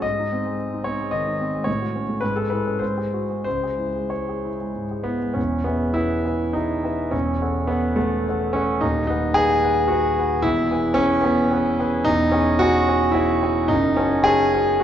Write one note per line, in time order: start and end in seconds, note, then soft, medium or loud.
0.02 1.64 G#2 medium
0.02 0.86 D#5 medium
0.19 0.40 D#4 soft
0.33 0.54 C4 soft
0.46 0.89 G#3 soft
0.74 0.95 D#4 soft
0.84 1.08 C4 soft
0.84 1.12 C#5 medium
1.01 1.21 G#3 soft
1.11 1.35 D#3 soft
1.11 1.66 D#5 medium
1.27 1.48 D#4 soft
1.41 1.62 C4 soft
1.55 1.68 G#3 soft
1.64 2.21 A2 medium
1.64 2.21 C#5 medium
1.82 2.03 F#4 soft
1.96 2.17 C#4 soft
2.09 2.23 A3 soft
2.21 2.80 G#2 medium
2.21 2.36 B4 medium
2.36 2.60 G#4 soft
2.36 2.51 A4 medium
2.50 2.76 E4 soft
2.50 2.81 B4 medium
2.66 2.81 C#4 soft
2.79 3.44 G#2 medium
2.79 3.43 C5 medium
2.98 3.23 G#4 soft
3.13 3.39 F#4 soft
3.30 3.46 G#3 soft
3.44 5.34 C#2 soft
3.44 4.10 C5 medium
3.63 3.89 G#4 soft
3.79 4.05 E4 soft
3.96 4.47 G#3 soft
4.10 5.06 C#5 medium
4.29 4.54 G#4 soft
4.45 4.69 E4 soft
4.61 4.85 G#3 soft
4.75 5.00 G#2 soft
4.91 5.16 G#4 soft
5.04 5.36 B3 medium
5.04 5.31 E4 soft
5.22 5.37 G#3 soft
5.34 5.66 E1 soft
5.34 5.66 E2 medium
5.34 5.66 C#4 medium
5.64 5.95 B3 medium
5.64 5.93 G#4 soft
5.64 5.94 B4 soft
5.64 5.94 E5 soft
5.94 6.54 E4 medium
5.94 6.23 G#4 soft
5.94 6.23 B4 soft
5.94 6.23 E5 medium
6.25 6.52 G#4 soft
6.25 6.53 B4 soft
6.25 6.53 E5 soft
6.53 7.13 D#4 medium
6.53 6.82 G#4 soft
6.53 6.82 B4 soft
6.53 6.83 E5 soft
6.84 7.10 G#4 soft
6.84 7.11 B4 soft
6.84 7.11 E5 soft
7.11 7.41 E1 medium
7.11 7.41 E2 medium
7.11 7.70 C#4 medium
7.42 7.68 A4 soft
7.42 7.68 C#5 soft
7.42 7.68 F#5 soft
7.67 7.98 B3 medium
7.67 7.96 A4 soft
7.67 7.96 C#5 soft
7.67 7.96 F#5 medium
7.96 8.54 A3 medium
7.96 8.24 A4 soft
7.96 8.24 C#5 soft
7.96 8.25 F#5 medium
8.29 8.54 A4 soft
8.29 8.54 C#5 soft
8.29 8.54 F#5 soft
8.53 8.82 C#4 medium
8.53 8.80 A4 medium
8.53 8.81 C#5 medium
8.53 8.81 F#5 medium
8.81 9.09 D#1 medium
8.81 9.10 D#2 medium
8.81 9.06 D#4 medium
9.07 9.35 D#4 medium
9.07 9.34 B4 soft
9.07 9.34 F#5 medium
9.34 9.90 G#4 loud
9.34 9.61 B4 medium
9.34 9.61 F#5 medium
9.64 9.88 B4 medium
9.64 9.88 F#5 medium
9.88 10.43 F#4 medium
9.88 10.15 B4 medium
9.88 10.15 F#5 medium
10.18 10.42 B4 medium
10.18 10.43 F#5 medium
10.42 10.70 E1 medium
10.42 10.71 E2 medium
10.42 10.97 E4 loud
10.71 10.95 G#4 soft
10.71 10.95 B4 medium
10.71 10.96 G#5 medium
10.94 11.23 C#4 loud
10.94 11.22 G#4 medium
10.94 11.22 B4 medium
10.94 11.22 G#5 medium
11.21 11.77 B3 medium
11.21 11.49 G#4 medium
11.21 11.49 B4 medium
11.25 11.50 G#5 medium
11.52 11.76 G#4 medium
11.52 11.77 B4 medium
11.52 11.77 G#5 medium
11.80 12.04 G#4 medium
11.80 12.04 B4 medium
11.80 12.04 G#5 medium
12.05 12.33 E1 medium
12.05 12.33 E2 medium
12.05 12.33 D#4 loud
12.32 12.60 C#4 medium
12.32 12.58 G#4 medium
12.32 12.59 C#5 medium
12.32 12.58 G#5 medium
12.59 13.15 F#4 loud
12.59 12.86 G#4 medium
12.59 12.86 C#5 medium
12.59 12.86 G#5 medium
12.88 13.13 G#4 medium
12.88 13.13 C#5 medium
12.88 13.13 G#5 medium
13.12 13.70 E4 medium
13.12 13.40 G#4 medium
13.12 13.40 C#5 medium
13.12 13.41 G#5 medium
13.43 13.69 G#4 medium
13.43 13.69 C#5 medium
13.43 13.69 G#5 medium
13.68 13.97 F#1 medium
13.68 13.98 F#2 medium
13.68 13.98 D#4 loud
13.96 14.26 C#4 medium
13.96 14.24 F#4 medium
13.96 14.24 C#5 medium
13.96 14.24 A5 medium
14.24 14.51 F#4 medium
14.24 14.81 G#4 loud
14.24 14.52 C#5 medium
14.24 14.52 A5 medium
14.55 14.79 F#4 medium
14.55 14.80 C#5 medium
14.55 14.80 A5 medium
14.80 14.84 F#4 medium